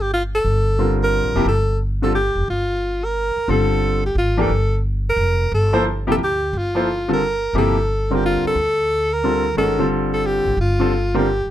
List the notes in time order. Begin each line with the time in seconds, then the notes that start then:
Already playing: G1
0.01 G4
0.14 F4
0.35 A4
0.45 G1
0.79 D3 G3 C4 F4 A#4
1.03 A#4
1.23 A1
1.35 F1 C3 F3 A#3 E4 G4
1.45 G1 A4
2.02 D3 G3 C4 F4 A4
2.15 G4
2.35 F1
2.48 G1 F4
3.04 A#4
3.36 muted upright bass stroke
3.48 G1 D3 G3 C4 F4 A4
4.06 G4
4.15 G#1 F4
4.37 E3 A3 D4 G4 A4 A#4
4.49 G1
5.09 A#4
5.16 F1
5.52 G1 A4
5.73 F3 A#3 E4 A4 C5
6.07 C3 F3 A#3 E4 G4
6.11 A4
6.18 D2
6.23 G4
6.53 G1
6.58 F4
6.75 F3 A#3 E4 A4 C5
7.08 D3 G3 C4 F4 A4
7.13 A#4
7.53 G1 C3 F3 A#3 E4 G4
7.58 A4
8.11 D3 G3 C4 F4 A#4
8.15 G4
8.25 F4
8.45 A4, muted upright bass stroke
8.55 D2
9.13 A#4
9.24 D3 G3 C4 F4 A4
9.55 G1 D#3 G#3 C#4 F#4 A4 A#4
9.79 D3 G3 C4 F4 A4
10.14 A4
10.26 G4
10.46 G#1
10.57 G1 F4
10.79 D3 G3 C4 F4 A4
11.14 D3 G3 C4 F4 G4 A#4
11.46 muted upright bass stroke